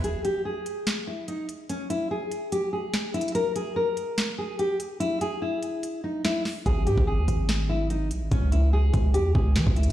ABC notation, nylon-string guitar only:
X:1
M:4/4
L:1/8
Q:1/4=145
K:C#dor
V:1 name="Nylon-string guitar"
G =G ^G3 E D z | C E G2 =G ^G2 E | A G A3 G =G z | E G E3 D E z |
G =G ^G3 E D z | C E G2 =G ^G2 E |]